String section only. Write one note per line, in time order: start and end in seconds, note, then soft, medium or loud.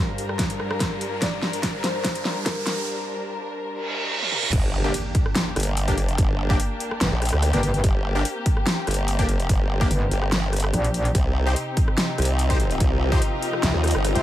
0.00 4.49 G2 medium
0.00 4.49 G3 medium
0.00 4.49 D4 medium
0.00 4.49 A#4 medium
4.53 11.11 A#3 medium
4.53 7.81 D4 medium
4.53 11.11 G4 medium
7.84 11.12 C4 medium
11.15 14.23 C3 medium
11.15 14.23 C4 medium
11.15 14.23 D#4 medium
11.15 14.23 G4 medium